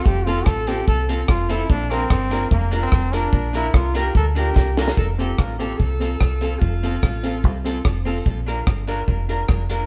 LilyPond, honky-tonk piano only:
\new Staff \with { instrumentName = "Honky-tonk piano" } { \time 4/4 \key f \major \tempo 4 = 146 r8 <c' f' a'>8 r8 <c' f' a'>8 r8 <c' f' a'>8 r8 <c' f' a'>8 | r8 <d' f' bes'>8 r8 <d' f' bes'>8 r8 <d' f' bes'>8 r8 <d' f' bes'>8 | r8 <d' f' bes'>8 r8 <d' f' bes'>8 r8 <d' f' bes'>8 r8 <d' f' bes'>8 | r8 <c' f' a'>8 r8 <c' f' a'>8 <f' a'>8 <c' f' a'>8 r8 <c' f' a'>8 |
r8 <c' f' a'>8 r8 <c' f' a'>8 <f' a'>8 <c' f' a'>8 r8 <c' f' a'>8 | r8 <d' f' bes'>8 r8 <d' f' bes'>8 <f' bes'>8 <d' f' bes'>8 r8 <d' f' bes'>8 | }